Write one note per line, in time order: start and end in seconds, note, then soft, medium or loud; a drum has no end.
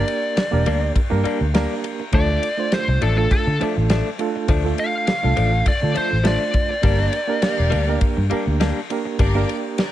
0.00 0.39 A#3 medium
0.00 0.40 D4 medium
0.00 0.40 G4 medium
0.00 0.40 A#4 loud
0.00 0.92 D5 loud
0.07 muted clean electric guitar stroke soft
0.07 ride medium
0.36 muted clean electric guitar stroke soft
0.36 snare loud
0.36 ride medium
0.51 0.64 E1 medium
0.51 0.98 A#3 medium
0.51 0.98 D4 medium
0.51 0.99 G4 medium
0.51 0.99 A#4 loud
0.51 muted clean electric guitar stroke medium
0.66 0.90 D2 medium
0.66 0.82 G3 medium
0.66 0.81 A#3 medium
0.66 0.80 D4 medium
0.66 ride medium
0.82 muted clean electric guitar stroke soft
0.96 kick medium
0.96 ride medium
1.10 1.23 G2 medium
1.10 1.45 A#3 medium
1.10 1.46 D4 medium
1.10 1.46 G4 medium
1.10 1.46 A#4 loud
1.10 muted clean electric guitar stroke soft
1.24 1.40 G3 medium
1.24 1.41 A#3 medium
1.24 1.40 D4 medium
1.24 muted fingered electric bass stroke soft
1.24 ride medium
1.41 1.65 D2 medium
1.41 muted clean electric guitar stroke soft
1.54 1.73 G3 medium
1.54 2.02 A#3 medium
1.54 1.74 A#3 medium
1.54 2.02 D4 medium
1.54 1.74 D4 loud
1.54 2.02 G4 medium
1.54 2.03 A#4 medium
1.54 2.10 A#5 medium
1.54 snare loud
1.54 ride medium
1.84 muted clean electric guitar stroke soft
1.84 ride medium
2.00 muted clean electric guitar stroke soft
2.12 2.37 D2 loud
2.12 2.29 F3 medium
2.12 2.48 A3 medium
2.12 2.30 A3 medium
2.12 2.49 D4 medium
2.12 2.28 D4 medium
2.12 2.49 F4 medium
2.12 2.49 A4 medium
2.12 2.71 D5 loud
2.12 kick loud
2.12 ride medium
2.30 2.43 D4 medium
2.43 muted clean electric guitar stroke soft
2.43 ride medium
2.57 3.04 A3 medium
2.57 3.04 D4 medium
2.57 3.05 F4 medium
2.57 3.05 C5 medium
2.72 3.02 C5 medium
2.72 muted clean electric guitar stroke soft
2.72 snare loud
2.72 ride medium
2.88 2.99 C2 medium
2.88 muted clean electric guitar stroke soft
3.02 3.26 A1 medium
3.02 3.18 F3 medium
3.02 3.18 A3 medium
3.02 3.17 D4 medium
3.02 3.17 A4 medium
3.02 ride medium
3.16 3.52 A3 medium
3.16 3.52 D4 medium
3.16 3.52 F4 medium
3.16 3.53 A4 medium
3.16 3.31 A4 medium
3.16 muted clean electric guitar stroke soft
3.31 3.61 A4 loud
3.31 kick medium
3.31 ride medium
3.47 3.58 D3 medium
3.47 muted clean electric guitar stroke soft
3.60 3.76 F3 medium
3.60 4.08 A3 medium
3.60 3.77 A3 medium
3.60 4.08 D4 medium
3.60 3.75 D4 medium
3.60 4.09 F4 medium
3.60 4.09 A4 medium
3.60 muted fingered electric bass stroke soft
3.60 ride medium
3.76 4.01 A1 medium
3.76 muted clean electric guitar stroke soft
3.90 4.08 F3 medium
3.90 4.09 A3 medium
3.90 4.09 D4 medium
3.90 snare loud
3.90 ride medium
4.19 4.55 A3 medium
4.19 4.55 D4 medium
4.19 4.55 F4 medium
4.19 4.56 A4 medium
4.19 muted clean electric guitar stroke soft
4.19 ride medium
4.36 muted clean electric guitar stroke soft
4.48 4.73 D2 loud
4.48 4.65 F3 medium
4.48 4.65 A3 medium
4.48 4.63 D4 loud
4.48 kick loud
4.48 ride medium
4.64 5.10 A3 medium
4.64 4.78 A3 soft
4.64 5.11 D4 medium
4.64 4.78 D4 medium
4.64 5.11 F4 medium
4.64 5.11 A4 medium
4.78 5.65 F5 loud
4.78 muted clean electric guitar stroke soft
4.78 ride medium
5.07 muted clean electric guitar stroke soft
5.07 snare loud
5.07 ride medium
5.23 5.35 C2 medium
5.23 5.69 A3 medium
5.23 5.69 D4 medium
5.23 5.70 F4 medium
5.23 5.70 A4 medium
5.23 muted clean electric guitar stroke soft
5.37 5.61 A1 medium
5.37 5.53 F3 medium
5.37 5.52 A3 medium
5.37 5.51 D4 medium
5.37 ride medium
5.52 muted clean electric guitar stroke soft
5.66 5.96 D5 medium
5.66 kick medium
5.66 ride medium
5.82 5.94 D3 medium
5.82 6.17 A3 medium
5.82 6.17 D4 medium
5.82 6.18 F4 medium
5.82 6.18 A4 medium
5.82 muted clean electric guitar stroke soft
5.94 6.11 F3 medium
5.94 6.10 A3 medium
5.94 6.09 D4 medium
5.94 6.25 C5 medium
5.94 muted fingered electric bass stroke soft
5.94 ride medium
6.11 6.36 A1 medium
6.11 muted clean electric guitar stroke soft
6.24 6.43 F3 medium
6.24 6.43 A3 medium
6.24 6.72 A3 medium
6.24 6.44 D4 medium
6.24 6.73 D4 medium
6.24 6.73 F4 medium
6.24 6.74 C5 medium
6.24 7.99 D5 loud
6.24 snare loud
6.24 ride medium
6.54 muted clean electric guitar stroke soft
6.54 kick medium
6.54 ride medium
6.69 muted clean electric guitar stroke soft
6.82 7.08 G1 loud
6.82 6.99 G3 medium
6.82 7.18 A#3 medium
6.82 7.00 A#3 medium
6.82 7.19 D4 medium
6.82 6.97 D4 medium
6.82 7.13 G4 medium
6.82 7.19 G4 medium
6.82 7.13 A#4 medium
6.82 7.20 A#4 medium
6.82 7.13 D5 medium
6.82 kick loud
6.82 ride medium
6.99 7.12 A#3 medium
6.99 7.13 D4 medium
7.13 muted clean electric guitar stroke soft
7.13 ride medium
7.28 7.75 A#3 medium
7.28 7.75 D4 medium
7.28 7.75 G4 medium
7.28 7.76 A#4 medium
7.42 8.02 G4 medium
7.42 8.02 A#4 medium
7.42 8.02 F5 loud
7.42 muted clean electric guitar stroke soft
7.42 snare loud
7.42 ride medium
7.57 7.70 E1 medium
7.57 muted clean electric guitar stroke soft
7.70 7.97 D2 medium
7.70 7.87 G3 medium
7.70 7.86 A#3 medium
7.70 7.85 D4 medium
7.70 ride medium
7.87 8.23 A#3 medium
7.87 8.23 D4 medium
7.87 8.23 G4 medium
7.87 8.24 A#4 medium
7.87 muted clean electric guitar stroke soft
8.01 kick medium
8.01 ride medium
8.17 8.29 G2 medium
8.17 muted clean electric guitar stroke soft
8.30 8.46 G3 medium
8.30 8.79 A#3 medium
8.30 8.46 A#3 medium
8.30 8.79 D4 medium
8.30 8.45 D4 medium
8.30 8.79 G4 medium
8.30 8.80 A#4 medium
8.30 muted fingered electric bass stroke soft
8.30 ride medium
8.46 8.71 D2 medium
8.46 muted clean electric guitar stroke soft
8.60 8.79 G3 medium
8.60 8.79 A#3 medium
8.60 8.80 D4 loud
8.60 snare loud
8.60 ride medium
8.90 9.26 A#3 medium
8.90 9.26 D4 medium
8.90 9.26 G4 medium
8.90 9.27 A#4 medium
8.90 muted clean electric guitar stroke soft
8.90 ride medium
9.05 muted clean electric guitar stroke soft
9.19 9.43 G1 loud
9.19 9.35 G3 medium
9.19 9.36 A#3 medium
9.19 9.34 D4 loud
9.19 9.49 G4 medium
9.19 9.49 A#4 medium
9.19 9.50 D5 loud
9.19 kick loud
9.19 ride medium
9.35 9.81 A#3 medium
9.35 9.49 A#3 soft
9.35 9.49 D4 medium
9.35 9.81 D4 medium
9.35 9.82 G4 medium
9.35 9.82 A#4 loud
9.49 muted clean electric guitar stroke soft
9.49 ride medium
9.78 9.92 G4 medium
9.78 9.92 A#4 medium
9.78 9.92 D5 loud
9.78 muted clean electric guitar stroke soft
9.78 snare loud
9.78 ride medium